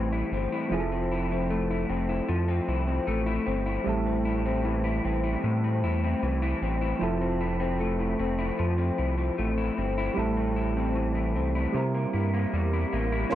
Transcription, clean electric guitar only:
Already playing: A2 E3 A3 C4 E4
0.13 E4
0.33 C4
0.52 E4
0.72 F3
0.92 C4
1.12 E4
1.31 C4
1.50 A3
1.71 E4
1.89 C4
2.09 E4
2.28 F3
2.48 C4
2.68 E4
2.87 C4
3.07 A3
3.26 E4
3.46 C4
3.66 E4
3.86 A2
4.06 C4
4.25 E4
4.46 C4
4.64 E3
4.84 E4
5.04 C4
5.24 E4
5.43 A2
5.64 C4
5.84 E4
6.04 C4
6.23 E3
6.42 E4
6.63 C4
6.81 E4
7.01 F3
7.21 C4
7.40 E4
7.60 C4
7.80 A3
7.99 E4
8.19 C4
8.39 E4
8.59 F3
8.78 C4
8.98 E4
9.18 C4
9.38 A3
9.58 E4
9.78 C4
9.98 E4
10.17 A2
10.37 C4
10.56 E4
10.77 C4
10.95 E3
11.15 E4
11.36 C4
11.55 E4
11.74 C3
11.95 A#3
12.13 E4
12.34 A#3
12.54 G3
12.73 E4
12.93 A#3
13.12 E4

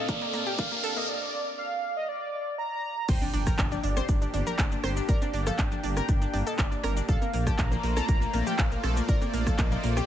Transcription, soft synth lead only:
Already playing: D#5
0.09 D5
0.59 F5
0.97 D#5
1.09 D5
1.58 F5
1.97 D#5
2.09 D5
2.58 A#5
3.08 G5
3.83 D5
5.09 D5
5.47 F5
5.59 G5
5.97 G5
6.47 D#5
6.59 D5
7.09 F5
7.47 A5
7.59 A#5
7.97 A#5
8.47 G5
8.59 F5
9.09 D5
9.47 F5
9.59 D#5
9.84 D5

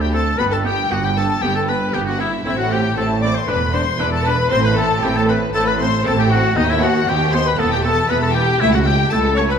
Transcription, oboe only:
0.01 G4
0.14 A4
0.39 B4
0.53 A4
0.65 G4
0.92 F#4
1.04 G4
1.17 A4
1.42 G4
1.55 A4
1.69 B4
1.94 G4
2.06 F#4
2.20 E4
2.45 E4
2.58 F#4
2.72 G4
2.97 A4
3.22 D5
3.35 C5
3.48 B4
3.74 C5
3.99 B4
4.12 A4
4.26 B4
4.52 C5
4.65 B4
4.78 A4
5.03 G4
5.16 A4
5.29 B4
5.55 A4
5.67 B4
5.81 C5
6.07 A4
6.19 G4
6.31 F#4
6.57 D#4
6.70 E4
6.83 F#4
7.08 G4
7.34 C5
7.47 B4
7.59 A4
7.73 G4
7.85 A4
8.10 B4
8.22 A4
8.35 G4
8.60 E4
8.75 F#4
8.86 G4
9.13 A4
9.37 C#5
9.51 B4

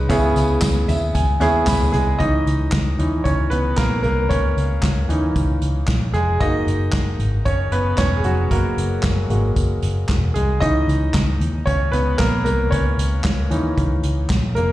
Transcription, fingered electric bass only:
0.10 C#2
0.36 C#2
0.62 C#2
0.88 D#2
1.15 C#2
1.41 D#2
1.67 C#2
1.93 C2
2.20 C#2
2.46 C#2
2.73 C#2
2.99 D#2
3.26 C#2
3.52 C#2
3.78 A#1
4.04 C2
4.31 C#2
4.57 C#2
4.83 C#2
5.09 D#2
5.36 C#2
5.62 C#2
5.88 A#1
6.14 F1
6.41 F#1
6.67 F#1
6.93 F#1
7.19 G#1
7.46 F#1
7.72 F#1
7.98 E1
8.24 F1
8.51 F#1
8.77 F#1
9.04 F#1
9.30 G#1
9.56 F#1
9.83 F#1
10.09 E1
10.35 C2
10.62 C#2
10.88 C#2
11.14 C#2
11.40 D#2
11.67 C#2
11.93 C#2
12.19 A#1
12.46 C2
12.72 C#2
12.98 C#2
13.25 C#2
13.51 D#2
13.78 C#2
14.04 C#2
14.30 A#1
14.56 F1

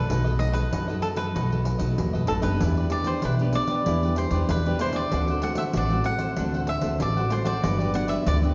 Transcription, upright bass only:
0.10 B1
0.72 F#2
1.36 B1
1.81 B1
1.98 D#2
2.15 B1
2.29 A1
2.44 F#1
2.62 E2
3.24 B1
3.87 E2
4.31 E2
4.50 E2
5.13 D2
5.75 A1
6.38 D2
6.83 D2
7.01 A1
7.64 G1
8.27 D2

